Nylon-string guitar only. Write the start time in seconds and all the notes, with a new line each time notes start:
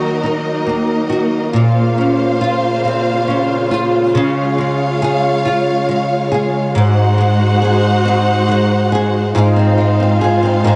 Already playing: D#3 A#3 D#4 F#4
0.23 D#4
0.66 A#3
1.09 F#4
1.53 A#2
1.98 C#4
2.41 F4
2.85 C4
3.28 C#4
3.71 F4
4.15 C#3
4.58 G#3
5.02 G#4
5.45 F4
5.89 G#3
6.32 G#4
6.75 G#2
7.18 G#3
7.62 G#4
8.05 C4
8.49 G#3
8.92 G#4
9.35 G#2 G#4
9.56 C4
9.78 G#3
10.00 C4
10.21 G#4
10.43 C4
10.64 G#2 G#4